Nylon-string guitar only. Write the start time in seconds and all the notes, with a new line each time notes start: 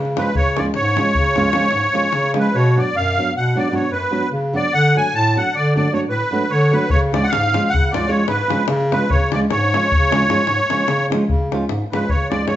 0.16 F3 G#3 C#4 F4
0.57 F3 G#3 C#4 F4
0.96 F3 G#3 C#4 F4
1.37 F3 G#3 C#4 F4
1.53 F3 G#3 C#4 F4
1.93 F3 G#3 C#4 F4
2.34 F3 G#3 C#4 F4
2.76 F#3 B3 D4 F#4
3.18 F#3 B3 D4 F#4
3.55 F#3 B3 D4 F#4
3.71 F#3 B3 D4 F#4
4.11 F#3 B3 D4 F#4
4.53 F#3 B3 D4 F#4
4.95 F#3 A3 D4 F#4
5.36 F#3 A3 D4 F#4
5.76 F#3 A3 D4 F#4
5.93 F#3 A3 D4 F#4
6.31 F#3 A3 D4 F#4
6.71 F#3 A3 D4 F#4
7.12 F3 G#3 C#4 F4
7.53 F3 G#3 C#4 F4
7.93 F3 G#3 C#4 F4
8.07 F3 G#3 C#4 F4
8.48 F3 G#3 C#4 F4
8.91 F3 G#3 C#4 F4
9.32 F3 G#3 C#4 F4
9.73 F3 G#3 C#4 F4
10.11 F3 G#3 C#4 F4
10.29 F3 G#3 C#4 F4
10.70 F3 G#3 C#4 F4
11.10 F3 G#3 C#4 F4
11.52 F3 G#3 C#4 F4
11.92 F3 G#3 C#4 F4
12.30 F3 G#3 C#4 F4
12.45 F3 G#3 C#4 F4